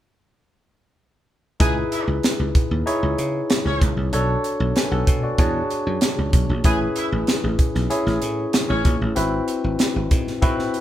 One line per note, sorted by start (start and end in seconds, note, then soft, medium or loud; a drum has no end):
1.60 1.82 C#2 loud
1.60 2.64 D#4 medium
1.60 2.65 E4 medium
1.60 1.73 G#4 medium
1.60 2.65 G#4 medium
1.60 2.65 B4 medium
1.60 1.72 G#5 loud
1.60 kick loud
1.60 closed hi-hat medium
1.91 2.04 E4 medium
1.91 2.04 E5 medium
1.91 closed hi-hat medium
2.07 2.19 C#2 medium
2.23 snare medium
2.23 closed hi-hat medium
2.39 2.50 C#2 medium
2.55 kick medium
2.55 closed hi-hat medium
2.71 2.82 D#2 medium
2.86 3.90 D#4 medium
2.86 3.91 E4 medium
2.86 3.91 G#4 medium
2.86 3.91 C#5 medium
2.86 closed hi-hat medium
3.03 3.14 C#2 medium
3.18 3.41 C#3 medium
3.18 closed hi-hat medium
3.50 snare loud
3.50 closed hi-hat medium
3.65 3.76 C#2 medium
3.65 3.91 C#4 medium
3.65 3.91 C#5 medium
3.82 3.93 C#2 medium
3.82 kick medium
3.82 closed hi-hat medium
3.97 4.08 C2 medium
4.13 4.35 B1 loud
4.13 5.17 D4 medium
4.13 4.76 F#4 medium
4.13 4.76 A4 medium
4.13 4.76 C#5 medium
4.13 closed hi-hat medium
4.44 closed hi-hat medium
4.60 4.71 B1 loud
4.76 4.91 B4 medium
4.76 4.91 G#5 medium
4.76 snare medium
4.76 closed hi-hat medium
4.91 5.03 B1 medium
4.91 5.22 A4 medium
4.91 5.21 F#5 medium
5.07 5.30 B2 medium
5.07 kick medium
5.07 closed hi-hat medium
5.23 5.38 F#4 medium
5.23 5.53 D5 medium
5.38 5.61 E2 loud
5.38 6.43 D4 medium
5.38 6.43 F#4 medium
5.38 6.43 G#4 medium
5.38 6.43 C#5 medium
5.38 kick loud
5.38 closed hi-hat medium
5.70 closed hi-hat medium
5.87 5.98 F#2 medium
6.01 snare loud
6.01 closed hi-hat loud
6.18 6.29 C#2 medium
6.33 6.45 B1 medium
6.33 kick loud
6.33 closed hi-hat medium
6.49 6.60 A#1 medium
6.64 6.87 A1 medium
6.64 7.69 C#4 medium
6.64 7.69 E4 medium
6.64 6.78 G#4 medium
6.64 7.69 G#4 medium
6.64 7.69 B4 medium
6.64 6.78 G#5 loud
6.64 kick loud
6.64 closed hi-hat medium
6.96 7.06 E4 medium
6.96 7.06 E5 medium
6.96 closed hi-hat medium
7.12 7.23 A1 loud
7.27 snare medium
7.27 closed hi-hat medium
7.44 7.55 A1 medium
7.59 kick medium
7.59 closed hi-hat medium
7.75 7.86 B1 medium
7.75 snare soft
7.90 8.95 C#4 medium
7.90 8.95 E4 medium
7.90 8.95 G#4 medium
7.90 8.95 C#5 medium
7.90 closed hi-hat medium
8.07 8.18 A1 loud
8.07 snare soft
8.22 8.45 A2 medium
8.22 closed hi-hat medium
8.53 snare loud
8.53 closed hi-hat medium
8.69 8.81 A1 medium
8.69 8.95 C#4 medium
8.69 8.95 C#5 medium
8.85 8.96 A#1 medium
8.85 kick loud
8.85 closed hi-hat medium
9.01 9.12 A1 medium
9.15 9.39 G#1 loud
9.15 10.21 C4 medium
9.15 10.21 E4 medium
9.15 10.21 F#4 medium
9.15 10.21 B4 medium
9.15 closed hi-hat medium
9.48 closed hi-hat medium
9.64 9.75 G#1 medium
9.79 snare medium
9.79 closed hi-hat medium
9.96 10.07 G#1 medium
10.11 10.34 G#2 loud
10.11 kick medium
10.11 closed hi-hat medium
10.27 snare soft
10.42 10.65 G#2 medium
10.42 10.80 C4 medium
10.42 10.80 E4 medium
10.42 10.80 F#4 medium
10.42 10.80 B4 medium
10.42 kick medium
10.42 closed hi-hat medium
10.59 snare soft
10.74 closed hi-hat medium